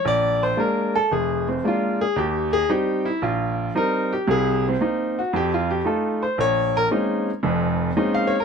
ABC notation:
X:1
M:4/4
L:1/16
Q:"Swing" 1/4=114
K:Bbdor
V:1 name="Grand piano"
=d2 c2 B2 =A2 _A2 C2 F2 A2 | G2 A2 G2 =E2 F4 B2 G2 | A2 C2 z2 _G2 (3=G2 F2 G2 =A2 c2 | d2 B2 z8 z f d B |]
V:2 name="Grand piano"
B,,,4 [A,B,=D]2 z2 F,,,4 [A,B,D]2 z2 | E,,4 [G,CE]2 z2 B,,,4 [G,CE]2 z2 | [C,,C,]4 [B,CE]2 z2 F,,4 [=A,EF]2 z2 | B,,,4 [A,B,CDE]2 z2 [F,,,F,,]4 [A,B,CDE]2 z2 |]